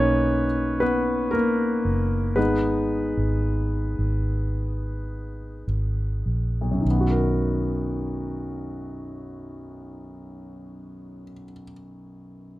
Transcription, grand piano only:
Already playing: A#3 C#4 D#4 C#5
0.80 B3 B4
1.31 A#3 A#4
2.36 G#3 B3 D#4 B4
6.61 B1
6.71 F#2
6.81 D#3
6.91 B3
7.01 F#4
7.10 A#4

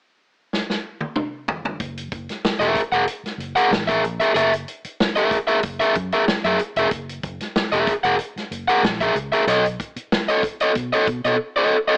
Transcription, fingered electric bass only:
1.80 F#1
2.12 F#1
2.60 E1
2.92 E1
3.24 muted fingered electric bass stroke
3.38 F#1
3.71 A1
4.03 A#1
4.35 F#1
4.85 muted fingered electric bass stroke
5.64 F#1
5.95 F#2
6.44 F#2
6.76 E1
6.91 F#1
7.24 F#1
7.72 E1
8.04 E1
8.36 muted fingered electric bass stroke
8.51 F#1
8.83 A#1
9.15 C#2
9.47 B1
9.96 muted fingered electric bass stroke
10.75 B2
11.08 B2
11.25 B2

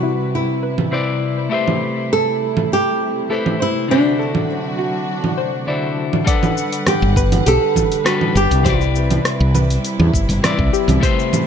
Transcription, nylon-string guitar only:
Already playing: F#4
0.35 E4
2.13 A4
2.73 G4
3.62 E4
3.91 D4
6.88 G4
7.48 A4
8.37 G4
8.66 E4

